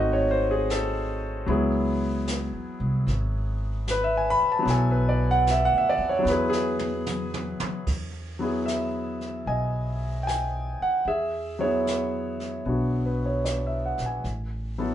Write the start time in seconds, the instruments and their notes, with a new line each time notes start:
Already playing: upright bass G#1, grand piano A3 C4 D#4 F#4 D#5
0.13 grand piano C#5
0.31 grand piano C5
0.51 grand piano G#4
0.70 grand piano A4, snare, hi-hat pedal
1.46 upright bass C#2, grand piano F#3 B3 E4, brush sweep
1.51 grand piano G#4
2.27 snare, hi-hat pedal
2.53 upright bass E2
2.80 upright bass C2
3.07 upright bass G#1, brush sweep, snare
3.87 grand piano B4, snare, hi-hat pedal
4.04 grand piano E5
4.17 grand piano G#5
4.30 grand piano B5
4.41 muted upright bass stroke
4.52 grand piano A5
4.59 grand piano F#3 B3
4.65 upright bass B1, grand piano E4, brush sweep, snare
4.70 grand piano A4 G#5
4.91 grand piano B4
5.09 grand piano D5
5.31 grand piano F#5
5.47 grand piano E5, snare, hi-hat pedal
5.65 grand piano F#5
5.72 upright bass D2
5.78 grand piano E5
5.89 grand piano D5
5.98 upright bass F2
6.09 grand piano C#5
6.19 grand piano F#3
6.23 upright bass E2, grand piano B3 E4, snare
6.30 grand piano G#4 B4
6.50 grand piano G#4, snare
6.79 high tom
7.06 hi-hat pedal, mid tom
7.34 mid tom
7.60 muted upright bass stroke, mid tom
7.87 upright bass E2, brush sweep, kick, snare, ride
8.39 grand piano F#3 B3 E4
8.44 grand piano G#4
8.66 grand piano E5, snare, hi-hat pedal
9.21 snare
9.46 upright bass B1, grand piano D#5 G#5, brush sweep
10.23 grand piano G5 G#5
10.28 snare, hi-hat pedal
10.81 grand piano F#5, muted upright bass stroke
11.05 upright bass E2, grand piano G#4 E5, brush sweep
11.59 grand piano F#3 B3 E4 G#4 C#5
11.64 grand piano G#4
11.87 snare, hi-hat pedal
12.40 snare
12.65 upright bass B1, grand piano B3 D4 F#4, brush sweep
13.06 grand piano B4
13.26 grand piano C#5
13.45 grand piano D5, snare, hi-hat pedal
13.67 grand piano E5
13.86 grand piano F#5
13.98 upright bass A#1, snare
14.06 grand piano G#5
14.24 upright bass A1, brush sweep, snare
14.78 grand piano F#3 B3 E4 A4